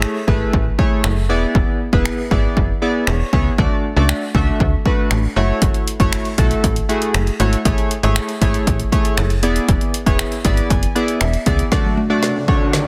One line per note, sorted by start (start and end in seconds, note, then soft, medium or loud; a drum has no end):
0.00 0.17 A3 medium
0.00 0.17 E4 medium
0.00 0.17 G#4 medium
0.00 0.17 C#5 medium
0.00 finger snap loud
0.27 0.44 G#1 medium
0.27 0.64 A3 medium
0.27 0.64 E4 medium
0.27 0.64 G#4 medium
0.27 0.64 B4 medium
0.27 kick medium
0.53 0.70 A1 loud
0.53 kick loud
0.78 1.15 A3 medium
0.78 1.15 E4 medium
0.78 1.15 G#4 medium
0.78 1.15 C#5 medium
0.78 kick medium
1.04 1.31 F#1 loud
1.04 finger snap loud
1.29 1.46 E1 loud
1.29 1.80 B3 medium
1.29 1.80 E4 medium
1.29 1.80 G#4 medium
1.29 1.81 D5 medium
1.55 1.63 E1 loud
1.55 kick loud
1.93 2.09 E1 medium
1.93 2.20 B3 medium
1.93 2.21 E4 medium
1.93 2.21 G#4 medium
1.93 2.21 B4 medium
1.93 kick medium
2.06 finger snap loud
2.31 2.48 G#1 medium
2.31 2.68 B3 medium
2.31 2.68 E4 medium
2.31 2.68 G#4 medium
2.31 2.68 D5 medium
2.31 kick medium
2.57 2.73 F#1 loud
2.57 kick medium
2.82 3.19 B3 medium
2.82 3.19 E4 medium
2.82 3.19 G#4 medium
2.82 3.19 D5 medium
3.07 3.24 E1 loud
3.07 3.32 C#5 medium
3.07 finger snap loud
3.33 3.49 C#2 medium
3.33 3.51 B3 medium
3.33 3.51 E4 medium
3.33 3.51 G#4 medium
3.33 3.51 C#5 medium
3.33 kick medium
3.58 3.67 D2 loud
3.58 3.86 A3 medium
3.58 3.86 D4 medium
3.58 3.86 F#4 medium
3.58 3.86 D5 medium
3.58 kick loud
3.96 4.13 C#2 medium
3.96 4.24 A3 medium
3.96 4.24 D4 medium
3.96 4.24 F#4 medium
3.96 4.24 D5 medium
4.09 finger snap loud
4.35 4.51 C#2 medium
4.35 4.71 A3 medium
4.35 4.71 D4 medium
4.35 4.71 F#4 medium
4.35 4.72 E5 medium
4.35 kick medium
4.60 4.76 D2 loud
4.60 kick medium
4.85 5.22 A3 medium
4.85 5.22 D4 medium
4.85 5.22 F#4 medium
4.85 5.22 B4 medium
4.85 kick medium
5.11 5.27 A1 medium
5.11 finger snap loud
5.36 5.53 F#1 loud
5.36 5.87 A3 medium
5.36 5.87 E4 medium
5.36 5.87 F#4 medium
5.36 5.87 C#5 medium
5.62 5.70 F#1 loud
5.62 kick loud
5.62 closed hi-hat medium
5.74 closed hi-hat soft
5.88 closed hi-hat medium
6.00 6.16 F#1 medium
6.00 6.27 A3 medium
6.00 6.27 E4 medium
6.00 6.27 F#4 medium
6.00 6.28 C#5 medium
6.00 kick medium
6.00 closed hi-hat medium
6.13 finger snap loud
6.13 closed hi-hat medium
6.25 closed hi-hat soft
6.38 6.54 B1 loud
6.38 6.75 A3 medium
6.38 6.75 E4 medium
6.38 6.75 F#4 medium
6.38 6.75 A4 medium
6.38 kick medium
6.38 closed hi-hat medium
6.51 closed hi-hat medium
6.64 6.80 A1 medium
6.64 kick loud
6.64 closed hi-hat medium
6.76 closed hi-hat medium
6.89 7.25 A3 medium
6.89 7.26 E4 medium
6.89 7.26 F#4 medium
6.89 7.26 G#4 medium
6.89 closed hi-hat medium
7.02 closed hi-hat medium
7.14 7.31 F#1 medium
7.14 finger snap loud
7.14 closed hi-hat medium
7.27 closed hi-hat medium
7.40 7.56 G#1 medium
7.40 7.58 A3 medium
7.40 7.58 E4 medium
7.40 7.58 F#4 medium
7.40 7.58 C#5 medium
7.40 closed hi-hat medium
7.53 closed hi-hat medium
7.65 7.73 A1 loud
7.65 7.93 A3 medium
7.65 7.93 E4 medium
7.65 7.93 G#4 medium
7.65 7.93 C#5 medium
7.65 kick loud
7.65 closed hi-hat medium
7.78 closed hi-hat soft
7.91 closed hi-hat medium
8.03 8.20 G#1 medium
8.03 8.31 A3 medium
8.03 8.31 E4 medium
8.03 8.31 G#4 medium
8.03 8.31 C#5 medium
8.03 closed hi-hat medium
8.16 finger snap loud
8.16 closed hi-hat medium
8.29 closed hi-hat medium
8.41 8.58 G#1 loud
8.41 8.78 A3 medium
8.41 8.78 E4 medium
8.41 8.78 G#4 medium
8.41 8.78 C#5 medium
8.41 kick medium
8.41 closed hi-hat medium
8.54 closed hi-hat medium
8.67 8.83 A1 loud
8.67 kick medium
8.67 closed hi-hat medium
8.80 closed hi-hat medium
8.92 9.29 A3 medium
8.92 9.29 E4 medium
8.92 9.29 G#4 medium
8.92 9.29 C#5 medium
8.92 kick medium
8.92 closed hi-hat medium
9.05 closed hi-hat medium
9.17 9.45 F#1 loud
9.17 finger snap loud
9.17 closed hi-hat medium
9.30 closed hi-hat medium
9.43 9.59 E1 loud
9.43 9.94 B3 medium
9.43 9.94 E4 medium
9.43 9.94 G#4 medium
9.43 9.94 D5 medium
9.43 closed hi-hat medium
9.56 closed hi-hat medium
9.69 9.77 E1 loud
9.69 kick loud
9.69 closed hi-hat medium
9.81 closed hi-hat soft
9.94 closed hi-hat medium
10.06 10.23 E1 medium
10.06 10.34 B3 medium
10.06 10.34 E4 medium
10.06 10.34 G#4 medium
10.06 10.34 C#5 medium
10.06 kick medium
10.06 closed hi-hat medium
10.19 finger snap loud
10.19 closed hi-hat medium
10.32 closed hi-hat soft
10.44 10.61 G#1 loud
10.44 10.81 B3 medium
10.44 10.81 E4 medium
10.44 10.81 G#4 medium
10.44 10.81 D5 medium
10.44 10.68 B5 medium
10.44 kick medium
10.44 closed hi-hat medium
10.57 closed hi-hat medium
10.70 10.87 F#1 loud
10.70 10.94 G#5 medium
10.70 kick medium
10.70 closed hi-hat medium
10.83 closed hi-hat medium
10.95 11.32 B3 medium
10.95 11.32 E4 medium
10.95 11.32 G#4 medium
10.95 11.32 D5 medium
10.95 11.19 F#5 medium
10.95 closed hi-hat medium
11.08 closed hi-hat soft
11.21 11.37 E1 loud
11.21 11.45 E5 medium
11.21 finger snap loud
11.21 closed hi-hat medium
11.33 closed hi-hat medium
11.46 11.63 C#2 medium
11.46 11.65 B3 medium
11.46 11.65 E4 medium
11.46 11.65 G#4 medium
11.46 11.65 D5 medium
11.46 kick medium
11.46 closed hi-hat medium
11.59 closed hi-hat medium
11.72 11.79 D3 medium
11.72 11.99 A3 medium
11.72 12.87 A3 medium
11.72 11.99 D4 medium
11.72 12.87 F#4 medium
11.72 11.99 F#4 medium
11.72 12.87 D5 medium
11.72 11.99 D5 medium
11.72 kick loud
11.72 snare medium
11.72 riser medium
11.85 11.92 F#3 medium
11.97 12.04 A3 medium
12.10 12.37 A3 medium
12.10 12.37 D4 medium
12.10 12.38 F#4 medium
12.10 12.38 D5 medium
12.23 12.30 F#4 medium
12.23 snare medium
12.48 12.76 A3 medium
12.48 12.76 D4 medium
12.48 12.76 F#4 medium
12.48 12.76 C#5 medium
12.48 12.55 F#5 medium
12.48 kick medium
12.73 12.81 D3 medium
12.73 snare medium